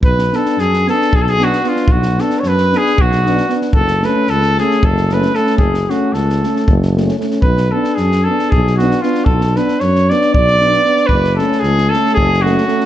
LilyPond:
<<
  \new Staff \with { instrumentName = "Trumpet" } { \time 7/8 \tempo 4 = 114 b'8 a'8 gis'8 a'8 gis'32 a'32 gis'16 fis'8 eis'8 | fis'8 a'16. cis''32 b'8 gis'8 fis'4~ fis'32 r16. | a'8 b'8 a'8 gis'8 a'8 b'8 a'8 | gis'8 fis'8 a'4~ a'32 r4 r16. |
b'8 a'8 gis'8 a'8 gis'8 fis'8 eis'8 | a'8 b'8 cis''8 d''8 d''4. | b'8 a'8 gis'8 a'8 gis'8 fis'4 | }
  \new Staff \with { instrumentName = "French horn" } { \time 7/8 r8 d'8 r8 d'8 r8 d'8 d'8 | r8 d'8 r8 d'8 r8 d'8 d'8 | r8 cis'8 r8 cis'8 r8 cis'8 cis'8 | r8 cis'8 r8 cis'8 r8 cis'8 cis'8 |
r8 d'8 r8 d'8 r8 d'8 d'8 | r8 d'8 r8 d'8 r8 d'8 d'8 | r8 cis'8 r8 cis'8 r8 cis'8 cis'8 | }
  \new Staff \with { instrumentName = "Euphonium" } { \time 7/8 r8 b8 r8 b8 r8 b8 b8 | r8 b8 r8 b8 r8 b8 b8 | r8 a8 r8 a8 r8 a8 a8 | r8 a8 r8 a8 r8 a8 a8 |
r8 b8 r8 b8 r8 b8 b8 | r8 b8 r8 b8 r8 b8 b8 | r8 a8 r8 a8 r8 a8 a8 | }
  \new Staff \with { instrumentName = "Tuba" } { \clef bass \time 7/8 b,,4 fis,4 b,,4. | b,,4 fis,4 b,,4. | fis,,4 cis,4 fis,,4. | fis,,4 cis,4 fis,,4. |
b,,4 fis,4 b,,4. | b,,4 fis,4 b,,4. | fis,,4 cis,4 fis,,4. | }
  \new DrumStaff \with { instrumentName = "Drums" } \drummode { \time 7/8 bd16 sn16 sn16 sn16 sn16 sn16 sn16 sn16 bd16 sn16 sn16 sn16 sn16 sn16 | bd16 sn16 sn16 sn16 sn16 sn16 sn16 sn16 bd16 sn16 sn16 sn16 sn16 sn16 | bd16 sn16 sn8 sn16 sn16 sn16 sn16 bd16 sn16 sn16 sn16 sn16 sn16 | bd16 sn16 sn8 sn16 sn16 sn16 sn16 bd16 sn16 sn16 sn16 sn16 sn16 |
bd16 sn8 sn16 sn16 sn8 sn16 bd16 sn16 sn16 sn16 sn16 sn16 | bd16 sn16 sn16 sn16 sn16 sn16 sn16 sn16 bd16 sn16 sn16 sn16 sn16 sn16 | bd16 sn16 sn16 sn16 sn16 sn16 sn16 sn16 bd16 sn16 sn16 sn16 sn16 sn16 | }
>>